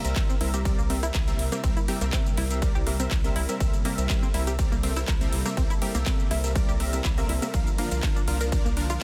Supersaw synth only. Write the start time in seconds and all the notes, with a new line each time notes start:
0.05 G3 C4 A#4 E5
0.16 G3 C4 A#4 E5
0.41 G3 C4 A#4 E5
0.54 G3 C4 A#4 E5
0.65 G3 C4 A#4 D5
0.90 G3 C4 A#4 E5
1.03 G3 C4 A#4 E5
1.27 G3 C4 A#4 E5
1.52 G3 C4 A#4 E5
1.64 G3 A#4 E5
1.88 G3 C4 A#4 E5
2.01 G3 C4 A#4 E5
2.13 G3 C4 A#4 E5
2.37 G3 C4 A#4 E5
2.51 G3 C4 A#4 E5
2.62 G3 A#4 D5
2.87 G3 C4 A#4 E5
3.00 G3 C4 A#4 E5
3.24 G3 C4 A#4 E5
3.49 G3 C4 A#4 E5
3.60 G3 C4 A#4 E5
3.85 G3 C4 A#4 E5
3.98 G3 C4 A#4 E5
4.10 G3 C4 E5
4.34 G3 C4 A#4 E5
4.47 G3 C4 A#4 E5
4.59 G3 C4 A#4 D5
4.83 G3 C4 A#4 E5
4.96 G3 C4 A#4 E5
5.21 G3 C4 A#4 E5
5.46 G3 C4 A#4 E5
5.57 G3 C4 A#4 E5
5.82 G3 C4 A#4 E5
5.95 G3 C4 A#4 E5
6.06 G3 C4 A#4 E5
6.31 G3 C4 A#4 E5
6.44 G3 C4 A#4 E5
6.55 G3 C4 A#4 D5
6.80 G3 C4 A#4 E5
6.93 G3 C4 A#4 E5
7.18 G3 C4 A#4 E5
7.42 G3 C4 A#4 E5
7.54 F3 D4 A#4 F5
7.78 F3 D4 A#4 F5
7.92 F3 D4 A#4 F5
8.03 F3 D4 A#4 F5
8.28 F3 D4 A#4 F5
8.41 F3 D4 A#4 F5
8.52 F3 D4 A#4 D5
8.77 F3 D4 A#4 F5
8.90 F3 D4 A#4 F5